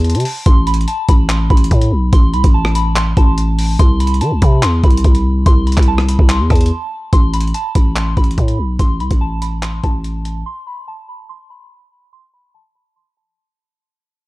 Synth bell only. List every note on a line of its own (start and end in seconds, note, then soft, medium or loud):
0.00 0.42 A5 medium
0.46 0.64 C6 loud
0.67 0.85 B5 medium
0.88 1.05 A5 medium
1.08 1.26 B5 medium
1.29 1.47 C6 medium
1.50 2.09 B5 medium
2.13 2.30 C6 loud
2.34 2.51 B5 medium
2.54 2.72 A5 medium
2.75 2.93 B5 medium
2.96 3.14 C6 loud
3.17 3.76 A5 medium
3.79 3.97 C6 loud
4.00 4.18 B5 medium
4.21 4.39 A5 medium
4.42 4.60 B5 medium
4.63 4.80 C6 medium
4.84 5.42 B5 medium
5.46 5.64 C6 loud
5.67 5.85 B5 medium
5.88 6.06 A5 medium
6.09 6.26 B5 medium
6.29 6.47 C6 medium
6.50 7.09 A5 medium
7.13 7.30 C6 loud
7.34 7.51 B5 medium
7.54 7.72 A5 medium
7.75 7.93 B5 medium
7.96 8.14 C6 medium
8.17 8.76 B5 medium
8.79 8.97 C6 loud
9.00 9.18 B5 medium
9.21 9.39 A5 loud
9.42 9.60 B5 medium
9.63 9.80 C6 medium
9.84 10.42 A5 medium
10.46 10.64 C6 loud
10.67 10.85 B5 medium
10.88 11.05 A5 medium
11.09 11.26 B5 medium
11.29 11.47 C6 medium
11.50 12.09 B5 medium
12.13 12.30 C6 loud
12.34 12.51 B5 medium
12.54 12.72 A5 medium
12.75 12.93 B5 medium
12.96 13.14 C6 medium
13.17 13.76 A5 medium